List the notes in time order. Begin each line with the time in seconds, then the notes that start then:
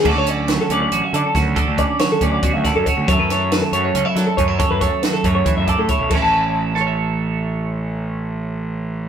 0.05 D2 D3 F#3 C#4 F#4 A4 D5, kick, crash
0.16 D2 C#5
0.26 C#4 D5, closed hi-hat
0.48 F#3 C#5, snare, closed hi-hat
0.61 A4
0.70 D2 C#4 D5, closed hi-hat
0.82 D5
0.92 A1 F#4, closed hi-hat
1.04 E5
1.13 D3 A4 D5, closed hi-hat
1.26 A4
1.35 D2 F#4 C#5, kick, snare, closed hi-hat
1.55 D3 A4 D5, kick, closed hi-hat
1.67 D2 C#5
1.78 C#4 D5, kick, closed hi-hat
1.99 F#3 C#5, snare, closed hi-hat
2.12 A4
2.21 D2 C#4 D5, kick, closed hi-hat
2.32 D5
2.43 B2 F#4, kick, closed hi-hat
2.53 D2 E5
2.64 A4 D5, kick, snare, closed hi-hat
2.76 F#2 A4
2.86 F#4 C#5, kick, closed hi-hat
2.97 D2
3.08 F#2 F#3 A3 E4 C#5, kick, closed hi-hat
3.13 A4
3.19 F#2 B4
3.30 A3 C#5, snare, closed hi-hat
3.52 F#3 B4, snare, closed hi-hat
3.62 A4
3.73 F#2 A3 C#5, closed hi-hat
3.84 C#5
3.94 C#2 C#4, closed hi-hat
4.05 E4 E5
4.16 F#3 A4 D5, snare, closed hi-hat
4.26 A4
4.37 F#2 C#4 C#5, kick, closed hi-hat
4.48 E4
4.59 F#2 A4 C#5, kick, closed hi-hat
4.70 F#2 B4
4.81 A3 C#5, kick, closed hi-hat
5.03 F#3 B4, snare, closed hi-hat
5.13 A4
5.24 F#2 A3 C#5, kick, closed hi-hat
5.35 C#5
5.45 E3 E4, kick, closed hi-hat
5.56 F#2 E5
5.68 A4 D5, kick, closed hi-hat
5.78 A2 A4
5.88 E4 C#5, kick, closed hi-hat
5.99 B1
6.10 A1 A2 E3 A4, kick, crash
6.14 C#4 E4 C#5 E5
6.22 A5
6.75 A4, cross-stick
6.81 C#5
6.87 E5